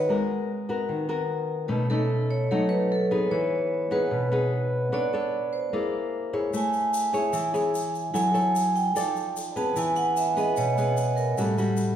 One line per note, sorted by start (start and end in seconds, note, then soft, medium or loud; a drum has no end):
0.00 0.12 B4 medium
0.00 0.12 C#5 medium
0.00 0.12 D#5 medium
0.09 0.88 G#3 medium
0.09 0.49 B3 soft
0.09 0.50 F#4 medium
0.09 0.50 A#4 medium
0.69 1.07 B3 medium
0.69 1.07 F#4 medium
0.69 1.07 A#4 medium
0.89 1.68 D#3 medium
1.09 1.68 B3 medium
1.09 1.68 F#4 medium
1.09 1.69 A#4 medium
1.68 2.48 B2 medium
1.68 1.86 A3 medium
1.68 1.87 C#4 medium
1.68 1.87 D#4 medium
1.90 2.48 A3 medium
1.90 2.48 C#4 medium
1.90 2.48 D#4 medium
1.90 2.28 A4 medium
2.31 2.50 C#5 medium
2.51 3.30 F#3 medium
2.51 2.91 A3 medium
2.51 2.91 C#4 medium
2.51 2.92 D#4 medium
2.51 2.71 A4 medium
2.69 2.90 B4 medium
2.92 3.04 A4 medium
3.11 3.89 B3 medium
3.11 3.89 D#4 medium
3.11 3.89 G#4 medium
3.31 4.10 E3 medium
3.31 3.88 C#5 medium
3.91 4.29 B3 medium
3.91 4.29 D#4 medium
3.91 4.29 G#4 medium
3.91 4.30 B4 medium
4.11 4.90 B2 medium
4.32 4.91 B3 medium
4.32 4.91 D#4 medium
4.32 4.91 G#4 medium
4.92 5.71 B3 medium
4.92 5.10 D4 medium
4.92 5.10 A4 medium
4.92 5.10 C#5 medium
4.92 5.50 D5 medium
5.13 5.70 D4 medium
5.13 5.70 A4 medium
5.13 5.71 C#5 medium
5.53 5.90 C5 medium
5.73 6.52 A#3 medium
5.73 6.30 E4 medium
5.73 6.31 G#4 medium
5.73 6.31 D5 medium
6.33 7.11 E4 medium
6.33 7.11 G#4 medium
6.33 7.11 C#5 medium
6.53 7.32 A3 medium
6.53 7.11 G#5 medium
6.53 shaker medium
6.73 shaker soft
6.94 shaker medium
7.13 7.51 E4 medium
7.13 7.51 G#4 medium
7.13 7.51 C#5 medium
7.13 7.53 E5 soft
7.13 shaker soft
7.33 8.12 E3 medium
7.33 shaker medium
7.54 8.12 E4 medium
7.54 8.13 G#4 medium
7.54 8.13 C#5 medium
7.54 shaker soft
7.75 shaker medium
7.95 shaker soft
8.14 8.93 F#3 medium
8.14 8.31 E4 medium
8.14 8.32 A4 medium
8.14 8.32 C#5 medium
8.14 8.71 G#5 medium
8.14 shaker medium
8.34 8.92 E4 medium
8.34 8.92 A4 medium
8.34 8.92 C#5 medium
8.34 shaker soft
8.56 shaker medium
8.76 9.13 G5 medium
8.76 shaker soft
8.95 9.74 F3 medium
8.95 9.35 D#4 medium
8.95 9.36 A4 medium
8.95 9.36 D5 medium
8.95 shaker medium
9.16 shaker soft
9.37 shaker medium
9.56 10.33 B3 medium
9.56 10.33 C#4 medium
9.56 10.34 G#4 medium
9.56 9.76 A5 medium
9.56 shaker soft
9.76 10.55 E3 medium
9.76 9.97 G#5 medium
9.76 shaker medium
9.96 10.16 F#5 medium
9.96 shaker soft
10.17 10.36 E5 medium
10.17 shaker medium
10.36 10.74 B3 medium
10.36 10.74 C#4 medium
10.36 10.74 G#4 medium
10.36 10.57 D#5 medium
10.36 shaker soft
10.57 11.36 B2 medium
10.57 11.14 C#5 medium
10.57 shaker medium
10.78 11.36 B3 medium
10.78 11.36 C#4 medium
10.78 11.37 G#4 medium
10.78 shaker soft
10.97 shaker medium
11.16 11.36 A#4 medium
11.16 shaker soft
11.37 11.96 A2 medium
11.37 11.54 G3 medium
11.37 11.55 C#4 medium
11.37 11.55 F#4 medium
11.37 11.96 A4 medium
11.37 shaker medium
11.58 11.96 G3 medium
11.58 11.96 C#4 medium
11.58 11.96 F#4 medium
11.58 shaker soft
11.77 shaker medium